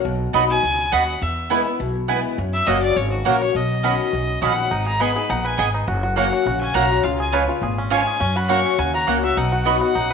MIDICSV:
0, 0, Header, 1, 6, 480
1, 0, Start_track
1, 0, Key_signature, 5, "major"
1, 0, Tempo, 291262
1, 84, Time_signature, 4, 2, 24, 8
1, 16699, End_track
2, 0, Start_track
2, 0, Title_t, "Fiddle"
2, 0, Program_c, 0, 110
2, 822, Note_on_c, 0, 80, 120
2, 1518, Note_on_c, 0, 78, 101
2, 1543, Note_off_c, 0, 80, 0
2, 2013, Note_on_c, 0, 76, 83
2, 2038, Note_off_c, 0, 78, 0
2, 2744, Note_off_c, 0, 76, 0
2, 4174, Note_on_c, 0, 76, 106
2, 4398, Note_on_c, 0, 75, 100
2, 4423, Note_off_c, 0, 76, 0
2, 4639, Note_off_c, 0, 75, 0
2, 4649, Note_on_c, 0, 74, 113
2, 4881, Note_on_c, 0, 73, 96
2, 4906, Note_off_c, 0, 74, 0
2, 5126, Note_off_c, 0, 73, 0
2, 5135, Note_on_c, 0, 66, 53
2, 5359, Note_on_c, 0, 70, 99
2, 5384, Note_off_c, 0, 66, 0
2, 5625, Note_on_c, 0, 73, 96
2, 5650, Note_off_c, 0, 70, 0
2, 5862, Note_on_c, 0, 75, 90
2, 5887, Note_off_c, 0, 73, 0
2, 7284, Note_off_c, 0, 75, 0
2, 7294, Note_on_c, 0, 78, 102
2, 7974, Note_off_c, 0, 78, 0
2, 8025, Note_on_c, 0, 82, 97
2, 8244, Note_on_c, 0, 83, 110
2, 8269, Note_off_c, 0, 82, 0
2, 8732, Note_on_c, 0, 78, 94
2, 8757, Note_off_c, 0, 83, 0
2, 8990, Note_on_c, 0, 80, 114
2, 9014, Note_off_c, 0, 78, 0
2, 9212, Note_off_c, 0, 80, 0
2, 10162, Note_on_c, 0, 78, 97
2, 10847, Note_off_c, 0, 78, 0
2, 10893, Note_on_c, 0, 80, 104
2, 11118, Note_on_c, 0, 82, 112
2, 11143, Note_off_c, 0, 80, 0
2, 11589, Note_on_c, 0, 77, 83
2, 11614, Note_off_c, 0, 82, 0
2, 11846, Note_off_c, 0, 77, 0
2, 11856, Note_on_c, 0, 80, 94
2, 12069, Note_off_c, 0, 80, 0
2, 13045, Note_on_c, 0, 80, 110
2, 13782, Note_on_c, 0, 83, 99
2, 13806, Note_off_c, 0, 80, 0
2, 13996, Note_on_c, 0, 85, 113
2, 14021, Note_off_c, 0, 83, 0
2, 14479, Note_on_c, 0, 80, 96
2, 14504, Note_off_c, 0, 85, 0
2, 14724, Note_off_c, 0, 80, 0
2, 14734, Note_on_c, 0, 82, 113
2, 14871, Note_off_c, 0, 82, 0
2, 15223, Note_on_c, 0, 76, 102
2, 15450, Note_on_c, 0, 78, 86
2, 15475, Note_off_c, 0, 76, 0
2, 16168, Note_off_c, 0, 78, 0
2, 16178, Note_on_c, 0, 78, 105
2, 16699, Note_off_c, 0, 78, 0
2, 16699, End_track
3, 0, Start_track
3, 0, Title_t, "Mandolin"
3, 0, Program_c, 1, 25
3, 547, Note_on_c, 1, 59, 82
3, 555, Note_on_c, 1, 66, 87
3, 562, Note_on_c, 1, 75, 98
3, 568, Note_on_c, 1, 83, 91
3, 713, Note_off_c, 1, 59, 0
3, 717, Note_off_c, 1, 66, 0
3, 720, Note_off_c, 1, 75, 0
3, 723, Note_off_c, 1, 83, 0
3, 1510, Note_on_c, 1, 59, 86
3, 1519, Note_on_c, 1, 66, 108
3, 1525, Note_on_c, 1, 75, 98
3, 1530, Note_on_c, 1, 83, 102
3, 1675, Note_off_c, 1, 59, 0
3, 1679, Note_off_c, 1, 66, 0
3, 1682, Note_off_c, 1, 75, 0
3, 1685, Note_off_c, 1, 83, 0
3, 2470, Note_on_c, 1, 59, 86
3, 2478, Note_on_c, 1, 64, 90
3, 2482, Note_on_c, 1, 71, 98
3, 2486, Note_on_c, 1, 80, 111
3, 2635, Note_off_c, 1, 59, 0
3, 2639, Note_off_c, 1, 64, 0
3, 2641, Note_off_c, 1, 71, 0
3, 2643, Note_off_c, 1, 80, 0
3, 3431, Note_on_c, 1, 59, 97
3, 3437, Note_on_c, 1, 64, 101
3, 3445, Note_on_c, 1, 71, 105
3, 3449, Note_on_c, 1, 80, 100
3, 3596, Note_off_c, 1, 59, 0
3, 3599, Note_off_c, 1, 64, 0
3, 3603, Note_off_c, 1, 71, 0
3, 3605, Note_off_c, 1, 80, 0
3, 4393, Note_on_c, 1, 58, 91
3, 4403, Note_on_c, 1, 66, 98
3, 4408, Note_on_c, 1, 73, 95
3, 4415, Note_on_c, 1, 78, 99
3, 4557, Note_off_c, 1, 58, 0
3, 4562, Note_off_c, 1, 66, 0
3, 4565, Note_off_c, 1, 73, 0
3, 4568, Note_off_c, 1, 78, 0
3, 5357, Note_on_c, 1, 58, 97
3, 5361, Note_on_c, 1, 66, 104
3, 5370, Note_on_c, 1, 73, 110
3, 5377, Note_on_c, 1, 78, 108
3, 5519, Note_off_c, 1, 58, 0
3, 5522, Note_off_c, 1, 66, 0
3, 5526, Note_off_c, 1, 73, 0
3, 5529, Note_off_c, 1, 78, 0
3, 6317, Note_on_c, 1, 61, 90
3, 6328, Note_on_c, 1, 66, 91
3, 6333, Note_on_c, 1, 75, 100
3, 6339, Note_on_c, 1, 83, 104
3, 6479, Note_off_c, 1, 61, 0
3, 6485, Note_off_c, 1, 66, 0
3, 6487, Note_off_c, 1, 75, 0
3, 6491, Note_off_c, 1, 83, 0
3, 7278, Note_on_c, 1, 61, 92
3, 7285, Note_on_c, 1, 66, 98
3, 7292, Note_on_c, 1, 75, 103
3, 7298, Note_on_c, 1, 83, 108
3, 7440, Note_off_c, 1, 61, 0
3, 7444, Note_off_c, 1, 66, 0
3, 7447, Note_off_c, 1, 75, 0
3, 7450, Note_off_c, 1, 83, 0
3, 8239, Note_on_c, 1, 59, 94
3, 8247, Note_on_c, 1, 68, 92
3, 8251, Note_on_c, 1, 75, 97
3, 8257, Note_on_c, 1, 80, 99
3, 8400, Note_off_c, 1, 59, 0
3, 8404, Note_off_c, 1, 68, 0
3, 8406, Note_off_c, 1, 75, 0
3, 8410, Note_off_c, 1, 80, 0
3, 9193, Note_on_c, 1, 59, 102
3, 9204, Note_on_c, 1, 68, 94
3, 9208, Note_on_c, 1, 75, 100
3, 9213, Note_on_c, 1, 80, 105
3, 9357, Note_off_c, 1, 59, 0
3, 9363, Note_off_c, 1, 68, 0
3, 9365, Note_off_c, 1, 75, 0
3, 9368, Note_off_c, 1, 80, 0
3, 10152, Note_on_c, 1, 58, 91
3, 10160, Note_on_c, 1, 66, 93
3, 10167, Note_on_c, 1, 73, 100
3, 10171, Note_on_c, 1, 78, 102
3, 10317, Note_off_c, 1, 58, 0
3, 10321, Note_off_c, 1, 66, 0
3, 10324, Note_off_c, 1, 73, 0
3, 10327, Note_off_c, 1, 78, 0
3, 11107, Note_on_c, 1, 58, 92
3, 11114, Note_on_c, 1, 66, 99
3, 11121, Note_on_c, 1, 73, 106
3, 11127, Note_on_c, 1, 78, 111
3, 11274, Note_off_c, 1, 58, 0
3, 11278, Note_off_c, 1, 66, 0
3, 11281, Note_off_c, 1, 73, 0
3, 11284, Note_off_c, 1, 78, 0
3, 12068, Note_on_c, 1, 61, 88
3, 12076, Note_on_c, 1, 65, 97
3, 12081, Note_on_c, 1, 73, 99
3, 12086, Note_on_c, 1, 80, 100
3, 12235, Note_off_c, 1, 61, 0
3, 12239, Note_off_c, 1, 65, 0
3, 12241, Note_off_c, 1, 73, 0
3, 12244, Note_off_c, 1, 80, 0
3, 13025, Note_on_c, 1, 61, 104
3, 13033, Note_on_c, 1, 65, 98
3, 13039, Note_on_c, 1, 73, 110
3, 13044, Note_on_c, 1, 80, 115
3, 13193, Note_off_c, 1, 61, 0
3, 13197, Note_off_c, 1, 65, 0
3, 13199, Note_off_c, 1, 73, 0
3, 13202, Note_off_c, 1, 80, 0
3, 13983, Note_on_c, 1, 58, 91
3, 13990, Note_on_c, 1, 66, 94
3, 13996, Note_on_c, 1, 73, 99
3, 14000, Note_on_c, 1, 78, 105
3, 14151, Note_off_c, 1, 58, 0
3, 14155, Note_off_c, 1, 66, 0
3, 14158, Note_off_c, 1, 73, 0
3, 14160, Note_off_c, 1, 78, 0
3, 14943, Note_on_c, 1, 58, 90
3, 14950, Note_on_c, 1, 66, 95
3, 14955, Note_on_c, 1, 73, 95
3, 14963, Note_on_c, 1, 78, 104
3, 15111, Note_off_c, 1, 58, 0
3, 15114, Note_off_c, 1, 66, 0
3, 15117, Note_off_c, 1, 73, 0
3, 15121, Note_off_c, 1, 78, 0
3, 15905, Note_on_c, 1, 59, 87
3, 15915, Note_on_c, 1, 66, 96
3, 15921, Note_on_c, 1, 75, 98
3, 15926, Note_on_c, 1, 83, 101
3, 16071, Note_off_c, 1, 59, 0
3, 16076, Note_off_c, 1, 66, 0
3, 16079, Note_off_c, 1, 75, 0
3, 16082, Note_off_c, 1, 83, 0
3, 16699, End_track
4, 0, Start_track
4, 0, Title_t, "Five-string banjo"
4, 0, Program_c, 2, 105
4, 7762, Note_on_c, 2, 63, 68
4, 8015, Note_on_c, 2, 68, 65
4, 8242, Note_on_c, 2, 59, 62
4, 8448, Note_off_c, 2, 63, 0
4, 8486, Note_off_c, 2, 68, 0
4, 8506, Note_on_c, 2, 68, 55
4, 8729, Note_on_c, 2, 63, 72
4, 8928, Note_off_c, 2, 59, 0
4, 8976, Note_on_c, 2, 71, 55
4, 9165, Note_off_c, 2, 68, 0
4, 9206, Note_on_c, 2, 68, 59
4, 9412, Note_off_c, 2, 63, 0
4, 9464, Note_on_c, 2, 63, 58
4, 9640, Note_off_c, 2, 71, 0
4, 9683, Note_off_c, 2, 63, 0
4, 9687, Note_off_c, 2, 68, 0
4, 9689, Note_on_c, 2, 66, 67
4, 9920, Note_off_c, 2, 66, 0
4, 9940, Note_on_c, 2, 66, 64
4, 10158, Note_off_c, 2, 66, 0
4, 10177, Note_on_c, 2, 66, 60
4, 10405, Note_off_c, 2, 66, 0
4, 10425, Note_on_c, 2, 66, 59
4, 10636, Note_off_c, 2, 66, 0
4, 10656, Note_on_c, 2, 66, 70
4, 10905, Note_on_c, 2, 61, 55
4, 11110, Note_off_c, 2, 66, 0
4, 11129, Note_on_c, 2, 66, 59
4, 11365, Note_off_c, 2, 66, 0
4, 11385, Note_on_c, 2, 66, 59
4, 11609, Note_off_c, 2, 66, 0
4, 11611, Note_on_c, 2, 65, 69
4, 11863, Note_on_c, 2, 68, 63
4, 12086, Note_on_c, 2, 71, 64
4, 12136, Note_off_c, 2, 61, 0
4, 12292, Note_off_c, 2, 65, 0
4, 12345, Note_on_c, 2, 65, 60
4, 12523, Note_off_c, 2, 68, 0
4, 12571, Note_on_c, 2, 68, 71
4, 12770, Note_off_c, 2, 71, 0
4, 12826, Note_on_c, 2, 61, 60
4, 13004, Note_off_c, 2, 65, 0
4, 13040, Note_on_c, 2, 65, 60
4, 13252, Note_off_c, 2, 68, 0
4, 13303, Note_on_c, 2, 68, 58
4, 13484, Note_off_c, 2, 61, 0
4, 13521, Note_on_c, 2, 61, 83
4, 13523, Note_off_c, 2, 65, 0
4, 13527, Note_off_c, 2, 68, 0
4, 13775, Note_on_c, 2, 66, 63
4, 13984, Note_off_c, 2, 66, 0
4, 14004, Note_on_c, 2, 66, 58
4, 14206, Note_off_c, 2, 61, 0
4, 14261, Note_on_c, 2, 61, 69
4, 14462, Note_off_c, 2, 66, 0
4, 14482, Note_on_c, 2, 66, 64
4, 14715, Note_off_c, 2, 66, 0
4, 14735, Note_on_c, 2, 66, 60
4, 14921, Note_off_c, 2, 61, 0
4, 14940, Note_off_c, 2, 66, 0
4, 14960, Note_on_c, 2, 66, 60
4, 15196, Note_off_c, 2, 66, 0
4, 15216, Note_on_c, 2, 66, 56
4, 15443, Note_off_c, 2, 66, 0
4, 15446, Note_on_c, 2, 63, 63
4, 15690, Note_on_c, 2, 66, 59
4, 15920, Note_on_c, 2, 59, 61
4, 16127, Note_off_c, 2, 63, 0
4, 16151, Note_off_c, 2, 66, 0
4, 16170, Note_on_c, 2, 66, 54
4, 16400, Note_on_c, 2, 63, 72
4, 16604, Note_off_c, 2, 59, 0
4, 16699, Note_off_c, 2, 63, 0
4, 16699, Note_off_c, 2, 66, 0
4, 16699, End_track
5, 0, Start_track
5, 0, Title_t, "Steel-string acoustic guitar"
5, 0, Program_c, 3, 25
5, 84, Note_on_c, 3, 47, 89
5, 549, Note_on_c, 3, 54, 93
5, 562, Note_on_c, 3, 59, 88
5, 575, Note_on_c, 3, 63, 105
5, 578, Note_on_c, 3, 66, 96
5, 787, Note_off_c, 3, 66, 0
5, 801, Note_off_c, 3, 54, 0
5, 807, Note_off_c, 3, 59, 0
5, 807, Note_on_c, 3, 66, 60
5, 814, Note_off_c, 3, 63, 0
5, 838, Note_on_c, 3, 63, 51
5, 1000, Note_off_c, 3, 47, 0
5, 1030, Note_off_c, 3, 66, 0
5, 1041, Note_on_c, 3, 44, 94
5, 1046, Note_off_c, 3, 63, 0
5, 1501, Note_off_c, 3, 44, 0
5, 1527, Note_on_c, 3, 42, 88
5, 1984, Note_off_c, 3, 42, 0
5, 2008, Note_on_c, 3, 40, 86
5, 2474, Note_on_c, 3, 52, 92
5, 2485, Note_on_c, 3, 56, 92
5, 2494, Note_on_c, 3, 59, 108
5, 2506, Note_on_c, 3, 64, 110
5, 2710, Note_off_c, 3, 64, 0
5, 2724, Note_off_c, 3, 52, 0
5, 2730, Note_off_c, 3, 56, 0
5, 2730, Note_on_c, 3, 64, 63
5, 2734, Note_off_c, 3, 59, 0
5, 2760, Note_on_c, 3, 59, 52
5, 2923, Note_off_c, 3, 40, 0
5, 2952, Note_off_c, 3, 64, 0
5, 2965, Note_on_c, 3, 47, 92
5, 2968, Note_off_c, 3, 59, 0
5, 3433, Note_on_c, 3, 52, 83
5, 3443, Note_on_c, 3, 56, 92
5, 3457, Note_on_c, 3, 59, 91
5, 3467, Note_on_c, 3, 64, 100
5, 3881, Note_off_c, 3, 47, 0
5, 3898, Note_off_c, 3, 52, 0
5, 3903, Note_off_c, 3, 56, 0
5, 3910, Note_off_c, 3, 59, 0
5, 3914, Note_off_c, 3, 64, 0
5, 3920, Note_on_c, 3, 42, 99
5, 4393, Note_on_c, 3, 54, 90
5, 4404, Note_on_c, 3, 58, 104
5, 4417, Note_on_c, 3, 61, 95
5, 4426, Note_on_c, 3, 66, 110
5, 4839, Note_off_c, 3, 42, 0
5, 4858, Note_off_c, 3, 54, 0
5, 4863, Note_off_c, 3, 58, 0
5, 4870, Note_off_c, 3, 61, 0
5, 4874, Note_off_c, 3, 66, 0
5, 4884, Note_on_c, 3, 49, 98
5, 5357, Note_on_c, 3, 54, 83
5, 5369, Note_on_c, 3, 58, 97
5, 5380, Note_on_c, 3, 61, 88
5, 5390, Note_on_c, 3, 66, 92
5, 5801, Note_off_c, 3, 49, 0
5, 5820, Note_off_c, 3, 54, 0
5, 5826, Note_off_c, 3, 58, 0
5, 5832, Note_off_c, 3, 61, 0
5, 5837, Note_off_c, 3, 66, 0
5, 5847, Note_on_c, 3, 47, 90
5, 6301, Note_off_c, 3, 47, 0
5, 6321, Note_on_c, 3, 47, 100
5, 6330, Note_on_c, 3, 51, 100
5, 6344, Note_on_c, 3, 61, 96
5, 6353, Note_on_c, 3, 66, 101
5, 6782, Note_off_c, 3, 47, 0
5, 6787, Note_off_c, 3, 51, 0
5, 6793, Note_off_c, 3, 61, 0
5, 6798, Note_off_c, 3, 66, 0
5, 6813, Note_on_c, 3, 42, 94
5, 7272, Note_on_c, 3, 47, 80
5, 7287, Note_on_c, 3, 51, 91
5, 7297, Note_on_c, 3, 61, 92
5, 7303, Note_on_c, 3, 66, 94
5, 7726, Note_off_c, 3, 42, 0
5, 7738, Note_off_c, 3, 47, 0
5, 7745, Note_off_c, 3, 51, 0
5, 7750, Note_off_c, 3, 61, 0
5, 7753, Note_off_c, 3, 66, 0
5, 7761, Note_on_c, 3, 44, 90
5, 8239, Note_on_c, 3, 56, 89
5, 8252, Note_on_c, 3, 59, 98
5, 8262, Note_on_c, 3, 63, 100
5, 8275, Note_on_c, 3, 68, 108
5, 8472, Note_off_c, 3, 68, 0
5, 8487, Note_off_c, 3, 56, 0
5, 8492, Note_on_c, 3, 68, 67
5, 8494, Note_off_c, 3, 59, 0
5, 8499, Note_off_c, 3, 63, 0
5, 8525, Note_on_c, 3, 63, 51
5, 8680, Note_off_c, 3, 44, 0
5, 8714, Note_off_c, 3, 68, 0
5, 8721, Note_on_c, 3, 46, 96
5, 8731, Note_off_c, 3, 63, 0
5, 9182, Note_off_c, 3, 46, 0
5, 9200, Note_on_c, 3, 44, 94
5, 9662, Note_off_c, 3, 44, 0
5, 9685, Note_on_c, 3, 42, 88
5, 10154, Note_on_c, 3, 54, 94
5, 10170, Note_on_c, 3, 58, 103
5, 10180, Note_on_c, 3, 61, 104
5, 10190, Note_on_c, 3, 66, 106
5, 10601, Note_off_c, 3, 42, 0
5, 10618, Note_off_c, 3, 54, 0
5, 10626, Note_off_c, 3, 58, 0
5, 10631, Note_off_c, 3, 61, 0
5, 10636, Note_off_c, 3, 66, 0
5, 10645, Note_on_c, 3, 49, 94
5, 11109, Note_on_c, 3, 54, 91
5, 11128, Note_on_c, 3, 58, 92
5, 11135, Note_on_c, 3, 61, 99
5, 11146, Note_on_c, 3, 66, 93
5, 11561, Note_off_c, 3, 49, 0
5, 11575, Note_off_c, 3, 54, 0
5, 11585, Note_off_c, 3, 58, 0
5, 11589, Note_off_c, 3, 61, 0
5, 11594, Note_off_c, 3, 66, 0
5, 11604, Note_on_c, 3, 49, 94
5, 12070, Note_on_c, 3, 53, 97
5, 12080, Note_on_c, 3, 56, 103
5, 12093, Note_on_c, 3, 61, 108
5, 12105, Note_on_c, 3, 65, 94
5, 12304, Note_off_c, 3, 65, 0
5, 12322, Note_off_c, 3, 53, 0
5, 12324, Note_on_c, 3, 65, 66
5, 12327, Note_off_c, 3, 56, 0
5, 12334, Note_off_c, 3, 61, 0
5, 12357, Note_on_c, 3, 61, 54
5, 12520, Note_off_c, 3, 49, 0
5, 12549, Note_off_c, 3, 65, 0
5, 12558, Note_on_c, 3, 46, 92
5, 12566, Note_off_c, 3, 61, 0
5, 13019, Note_off_c, 3, 46, 0
5, 13033, Note_on_c, 3, 44, 90
5, 13497, Note_off_c, 3, 44, 0
5, 13511, Note_on_c, 3, 42, 97
5, 13990, Note_on_c, 3, 54, 94
5, 14004, Note_on_c, 3, 58, 93
5, 14011, Note_on_c, 3, 61, 96
5, 14025, Note_on_c, 3, 66, 108
5, 14433, Note_off_c, 3, 42, 0
5, 14455, Note_off_c, 3, 54, 0
5, 14462, Note_off_c, 3, 58, 0
5, 14466, Note_off_c, 3, 61, 0
5, 14473, Note_off_c, 3, 66, 0
5, 14481, Note_on_c, 3, 49, 92
5, 14950, Note_on_c, 3, 54, 81
5, 14965, Note_on_c, 3, 58, 96
5, 14975, Note_on_c, 3, 61, 85
5, 14982, Note_on_c, 3, 66, 94
5, 15191, Note_off_c, 3, 66, 0
5, 15201, Note_off_c, 3, 54, 0
5, 15209, Note_off_c, 3, 58, 0
5, 15210, Note_on_c, 3, 66, 59
5, 15214, Note_off_c, 3, 61, 0
5, 15243, Note_on_c, 3, 61, 46
5, 15397, Note_off_c, 3, 49, 0
5, 15431, Note_off_c, 3, 66, 0
5, 15439, Note_on_c, 3, 47, 93
5, 15448, Note_off_c, 3, 61, 0
5, 15903, Note_on_c, 3, 54, 99
5, 15915, Note_on_c, 3, 59, 93
5, 15926, Note_on_c, 3, 63, 90
5, 15933, Note_on_c, 3, 66, 96
5, 16355, Note_off_c, 3, 47, 0
5, 16370, Note_off_c, 3, 54, 0
5, 16376, Note_off_c, 3, 59, 0
5, 16382, Note_off_c, 3, 63, 0
5, 16385, Note_off_c, 3, 66, 0
5, 16403, Note_on_c, 3, 42, 97
5, 16699, Note_off_c, 3, 42, 0
5, 16699, End_track
6, 0, Start_track
6, 0, Title_t, "Upright bass"
6, 0, Program_c, 4, 32
6, 78, Note_on_c, 4, 35, 92
6, 426, Note_off_c, 4, 35, 0
6, 559, Note_on_c, 4, 35, 88
6, 970, Note_off_c, 4, 35, 0
6, 1039, Note_on_c, 4, 37, 84
6, 1450, Note_off_c, 4, 37, 0
6, 1522, Note_on_c, 4, 39, 88
6, 1932, Note_off_c, 4, 39, 0
6, 2002, Note_on_c, 4, 40, 94
6, 2694, Note_off_c, 4, 40, 0
6, 2961, Note_on_c, 4, 35, 89
6, 3654, Note_off_c, 4, 35, 0
6, 3926, Note_on_c, 4, 42, 94
6, 4272, Note_off_c, 4, 42, 0
6, 4409, Note_on_c, 4, 30, 86
6, 4816, Note_off_c, 4, 30, 0
6, 4882, Note_on_c, 4, 32, 91
6, 5292, Note_off_c, 4, 32, 0
6, 5370, Note_on_c, 4, 34, 88
6, 5777, Note_off_c, 4, 34, 0
6, 5843, Note_on_c, 4, 35, 90
6, 6535, Note_off_c, 4, 35, 0
6, 6807, Note_on_c, 4, 35, 82
6, 7216, Note_off_c, 4, 35, 0
6, 7280, Note_on_c, 4, 34, 82
6, 7692, Note_off_c, 4, 34, 0
6, 7767, Note_on_c, 4, 32, 94
6, 8458, Note_off_c, 4, 32, 0
6, 8728, Note_on_c, 4, 34, 91
6, 9136, Note_off_c, 4, 34, 0
6, 9202, Note_on_c, 4, 32, 88
6, 9612, Note_off_c, 4, 32, 0
6, 9682, Note_on_c, 4, 30, 96
6, 10374, Note_off_c, 4, 30, 0
6, 10637, Note_on_c, 4, 34, 88
6, 11050, Note_off_c, 4, 34, 0
6, 11119, Note_on_c, 4, 35, 88
6, 11531, Note_off_c, 4, 35, 0
6, 11598, Note_on_c, 4, 37, 100
6, 12291, Note_off_c, 4, 37, 0
6, 12549, Note_on_c, 4, 32, 90
6, 13245, Note_off_c, 4, 32, 0
6, 13523, Note_on_c, 4, 42, 98
6, 14214, Note_off_c, 4, 42, 0
6, 14474, Note_on_c, 4, 39, 93
6, 14887, Note_off_c, 4, 39, 0
6, 14960, Note_on_c, 4, 37, 87
6, 15370, Note_off_c, 4, 37, 0
6, 15442, Note_on_c, 4, 35, 96
6, 16132, Note_off_c, 4, 35, 0
6, 16404, Note_on_c, 4, 34, 89
6, 16699, Note_off_c, 4, 34, 0
6, 16699, End_track
0, 0, End_of_file